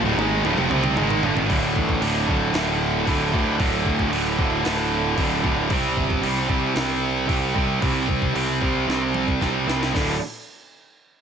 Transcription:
Already playing: string section F3 D4 G4
0.03 picked electric bass D1, distorted electric guitar D2 A2
0.17 picked electric bass G#1, distorted electric guitar G#2 D#3 G#3, high tom
0.44 picked electric bass D1, distorted electric guitar D2 A2, mid tom
0.57 picked electric bass F1, distorted electric guitar F2 C3, mid tom
0.70 picked electric bass C2, distorted electric guitar C3 G3 C4, mid tom
0.84 mid tom
0.96 picked electric bass G#1, distorted electric guitar G#2 D#3 G#3, mid tom
1.11 floor tom
1.22 picked electric bass G1, distorted electric guitar G2 D3, floor tom
1.36 picked electric bass G#1, distorted electric guitar G#2 D#3, floor tom
1.48 picked electric bass D1, distorted electric guitar D2 A2 D3, kick, crash
1.76 picked electric bass A1, kick
1.89 kick
2.01 picked electric bass D1, distorted electric guitar D2 A2 D3, crash
2.28 picked electric bass D1, distorted electric guitar D2 A2 D3, kick
2.53 picked electric bass D1, distorted electric guitar D2 A2 D3, snare, crash
3.07 picked electric bass D1, distorted electric guitar D2 A2 D3, kick, crash
3.33 distorted electric guitar D2 A2 D3, picked electric bass D2, kick
3.58 picked electric bass D1, distorted electric guitar D2 A2 D3, kick, crash
3.86 picked electric bass D2, kick
3.99 kick
4.11 picked electric bass D1, distorted electric guitar D2 A2 D3, crash
4.38 picked electric bass D1, distorted electric guitar D2 A2 D3, kick
4.64 picked electric bass D1, distorted electric guitar D2 A2 D3, snare, crash
5.17 picked electric bass D1, distorted electric guitar D2 A2 D3, kick, crash
5.44 picked electric bass D1, distorted electric guitar D2 A2 D3, kick
5.70 picked electric bass C2, distorted electric guitar C3 G3 C4, kick, crash
5.97 picked electric bass G1, kick
6.10 kick
6.23 picked electric bass C2, distorted electric guitar C3 G3 C4, crash
6.48 picked electric bass C2, distorted electric guitar C3 G3 C4, kick
6.75 picked electric bass C2, distorted electric guitar C3 G3 C4, snare, crash
7.26 picked electric bass C2, distorted electric guitar C3 G3 C4, kick, crash
7.54 picked electric bass C2, distorted electric guitar C3 G3 C4, kick
7.81 picked electric bass C2, distorted electric guitar C3 G3 C4, kick, crash
8.09 picked electric bass C2, kick
8.22 kick
8.34 picked electric bass C2, distorted electric guitar C3 G3 C4, crash
8.62 picked electric bass C2, distorted electric guitar C3 G3 C4, kick
8.88 picked electric bass C2, distorted electric guitar C3 G3 C4, snare
9.14 mid tom
9.28 kick
9.41 picked electric bass C2, distorted electric guitar C3 G3 C4, kick, snare
9.67 picked electric bass C2, distorted electric guitar C3 G3 C4, snare
9.83 snare
9.93 picked electric bass D1, distorted electric guitar D2 A2 D3, kick, snare, crash

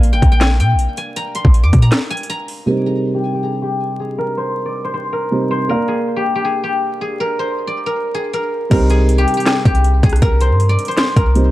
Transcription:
Already playing: 808-style bass A#1, felt piano A#3 A#4 D5 F5, guzheng G#5 A#5 C6
0.03 closed hi-hat
0.13 808-style bass G#1, guzheng G5
0.22 808-style bass A#1, kick, closed hi-hat
0.32 guzheng G5
0.41 guzheng G#5, snare, clap, closed hi-hat
0.60 808-style bass A#2, guzheng G5, closed hi-hat
0.74 808-style bass A#1
0.79 closed hi-hat
0.97 guzheng G#5, closed hi-hat
1.16 guzheng A#5, closed hi-hat
1.35 guzheng C6, closed hi-hat
1.45 808-style bass A#1, kick
1.54 closed hi-hat
1.63 808-style bass F2, guzheng D6
1.73 808-style bass A#2, kick, closed hi-hat
1.82 guzheng A#5, closed hi-hat
1.92 snare, clap, closed hi-hat
2.10 guzheng G#5, closed hi-hat
2.17 closed hi-hat
2.23 closed hi-hat
2.30 guzheng A#5, closed hi-hat
2.48 open hi-hat
2.66 felt piano C3 G3 D#4 C5, guzheng A#4
2.86 guzheng G#4
3.14 guzheng G4
3.33 guzheng G4
3.43 guzheng G#4
3.62 guzheng G4
4.00 guzheng G#4
4.18 guzheng A#4
4.37 guzheng C5
4.66 guzheng D5
4.84 guzheng C5
4.94 guzheng C5
5.13 guzheng A#4
5.31 felt piano C3 G3 D#4 C5
5.51 guzheng C5
5.68 felt piano A#3 A#4 D5 F5, guzheng A#4
5.88 guzheng G#4
6.16 guzheng G4
6.35 guzheng G4
6.45 guzheng G#4
6.64 guzheng G4
7.01 guzheng G#4
7.20 guzheng A#4
7.39 guzheng C5
7.67 guzheng D5
7.86 guzheng A#4
8.14 guzheng G#4
8.33 guzheng A#4
8.70 808-style bass C2, felt piano C3 G3 D#4 C5, guzheng A#4, kick, closed hi-hat, crash
8.90 guzheng G#4, closed hi-hat
9.09 closed hi-hat
9.18 guzheng G4
9.28 closed hi-hat
9.34 guzheng G4, closed hi-hat
9.40 closed hi-hat
9.46 guzheng G#4, snare, clap, closed hi-hat
9.65 808-style bass C2, guzheng G4, kick, closed hi-hat
9.75 closed hi-hat
9.84 closed hi-hat
10.03 808-style bass C2, guzheng G#4, kick, closed hi-hat
10.09 cross-stick, closed hi-hat
10.16 closed hi-hat
10.22 808-style bass C2, guzheng A#4, kick, closed hi-hat
10.40 guzheng C5, closed hi-hat
10.50 808-style bass G2
10.60 closed hi-hat
10.69 guzheng D5
10.79 closed hi-hat
10.85 guzheng C5, closed hi-hat
10.91 closed hi-hat
10.97 guzheng C5, snare, clap, closed hi-hat
11.16 808-style bass C2, guzheng A#4, kick, closed hi-hat
11.35 felt piano C3 G3 D#4 C5, closed hi-hat

